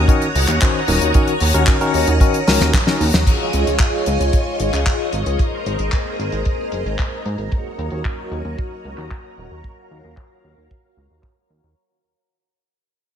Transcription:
Already playing: C#5 F#5 A#5 D#6
0.08 D#3 C#4 D#4 F#4 A#4, kick, closed hi-hat
0.22 closed hi-hat
0.35 C#2, open hi-hat
0.48 D#2, clap, closed hi-hat
0.61 D#3 C#4 D#4 F#4 C5, kick, clap, closed hi-hat
0.88 D#1 D#3 C#4 D#4 F#4 A#4, open hi-hat
1.01 D#2, closed hi-hat
1.14 D#3 C#4 D#4 F#4 A#4, kick, closed hi-hat
1.28 closed hi-hat
1.40 D#2, open hi-hat
1.54 D#2 D#3 C#4 D#4 F#4 A#4, closed hi-hat
1.67 kick, clap, closed hi-hat
1.81 D#3 C#4 D#4 F#4 A#4, closed hi-hat
1.94 D#2, open hi-hat
2.08 D#2, closed hi-hat
2.20 D#3 C#4 D#4 F#4 A#4, kick, closed hi-hat
2.34 closed hi-hat
2.47 C#2 D#3 C#4 D#4 F#4 A#4, snare, open hi-hat
2.60 D#2, snare, closed hi-hat
2.74 kick, snare, clap, closed hi-hat
2.87 D#3 C#4 D#4 F#4 A#4, snare
3.00 D#2, open hi-hat
3.14 D#2, snare, closed hi-hat
3.27 F4 G#4 C#5 D#5 G#5, kick, closed hi-hat, crash
3.53 C#2, closed hi-hat
3.67 C#2, closed hi-hat
3.79 kick, clap, closed hi-hat
4.06 C#2, closed hi-hat
4.20 C#2, closed hi-hat
4.33 kick, closed hi-hat
4.60 G#1, closed hi-hat
4.73 C#2, clap, closed hi-hat
4.86 kick, clap, closed hi-hat
5.13 G#1, closed hi-hat
5.26 C#2, closed hi-hat
5.39 G#4 A#4 C5 A#5, kick, closed hi-hat
5.66 G#1, closed hi-hat
5.79 G#1, closed hi-hat
5.92 kick, clap, closed hi-hat
6.19 G#1, closed hi-hat
6.32 G#1, closed hi-hat
6.45 kick, closed hi-hat
6.72 F#1, closed hi-hat
6.86 G#1, closed hi-hat
6.99 kick, clap, closed hi-hat
7.25 G#2, closed hi-hat
7.38 G#1, closed hi-hat
7.52 F#4 A#4 C#5 D#5 A#5, kick, closed hi-hat
7.78 D#2, closed hi-hat
7.91 D#2, closed hi-hat
8.05 kick, clap, closed hi-hat
8.31 D#2, closed hi-hat
8.45 D#2, closed hi-hat
8.58 kick, closed hi-hat
8.84 C#2, closed hi-hat
8.98 D#2, clap, closed hi-hat
9.11 kick, clap, closed hi-hat
9.38 D#1, closed hi-hat
9.51 D#2, closed hi-hat
9.64 F5, kick, closed hi-hat
9.91 D#2, closed hi-hat
10.04 D#2, closed hi-hat
10.17 kick, clap
10.43 D#2, closed hi-hat
10.57 D#2
10.71 kick, closed hi-hat
10.97 C#2, closed hi-hat
11.10 D#2
11.23 kick, clap
11.50 D#2
11.63 D#2

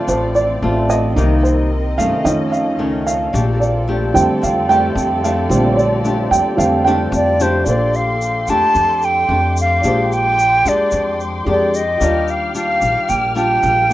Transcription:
Already playing: F3 A3 C4 F4 A4 C5 D5
0.08 A1 A2 C5, shaker
0.35 D5, shaker
0.62 A1 A3 C4 F4
0.90 D#5, shaker
1.15 C2 C3 D#3 G3 A#3 D#4 A#4 D#5, shaker
1.43 C5, shaker
1.98 G2 D#3 A3 C#4 F5, shaker
2.24 F2 D#3 A3 C#4 A4 D#5, shaker
2.52 F5, shaker
2.79 C#2 D#3 A3 C#4
3.07 F5, shaker
3.33 A#1 A#2 A3 C4 D4 G4 D5, shaker
3.60 D5, shaker
3.88 A3 D4 G4
4.14 F2 D3 G3 A3 C4 G5, shaker
4.42 F2 F5, shaker
4.69 A3 D4 G4 G5, shaker
4.95 F2, shaker
5.24 A3 D4 G4 F5, shaker
5.49 A#1 A#2 D3 G3 A3 C4, shaker
5.72 C#5
5.77 D5, shaker
6.04 A3 D4 G4, shaker
6.31 F2 G5, shaker
6.57 F2 D3 G3 A3 C4 F5, shaker
6.85 A3 D4 G4 G5, shaker
7.12 F2 D5, shaker
7.40 A3 D4 G4 C5, shaker
7.63 A#1 A#2 D4 G4 A4 D5 G5 C6 D6, shaker
7.70 C5
7.94 F5, shaker
8.22 shaker
8.47 F2 A3 D4 G4 A5, shaker
8.75 F2, shaker
9.02 G5, shaker
9.29 F2 A3 D4 G4
9.57 shaker
9.61 F5
9.81 A#1 A#2 G#3 D4 G4, shaker
9.85 C5 C6
10.12 G5, shaker
10.39 shaker
10.65 F2 G#3 D4 G4 D5, shaker
10.91 F2, shaker
11.21 shaker
11.44 F2 G#3 D4 G4 G#4 A#4
11.50 D5
11.74 D#5, shaker
11.97 D#3 F4 G4 F6
12.01 D#2 G3 D4 F4 A#4 D5, shaker
12.28 F5, shaker
12.55 G3 D4 F4 F5, shaker
12.82 A#1, shaker
13.08 A#1 A#2 G5, shaker
13.35 G3 D4 F4 G5, shaker
13.63 A#1, shaker
13.89 A#3 D4 F4

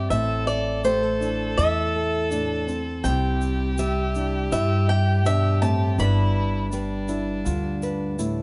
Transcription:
Already playing: E4 G4
0.10 A1 A2 C4 E4 A4 E5, shaker
0.47 D5, shaker
0.84 A3 G4 A4 C5, shaker
1.03 A4
1.20 D4 E4, shaker
1.57 E2 E3 E4 E5, shaker
1.96 A4
2.31 A2 D4, shaker
2.67 C4, shaker
3.04 C2 C3 G3 C4 G4 G5, shaker
3.08 E4 G4
3.41 shaker
3.78 G3 G4 E5, shaker
4.15 D4 E4, shaker
4.52 G2 E4 E5, shaker
4.88 G4 G5
5.25 B2 D4 E5, shaker
5.61 A2 C4 A5, shaker
5.98 G1 G2 G3 B3 D4 E4 B4 B5, shaker
6.72 G3 D4 B4, shaker
7.08 D4 E4, shaker
7.45 D2 D3 F4, shaker
7.83 B4, shaker
8.19 A2 E4, shaker

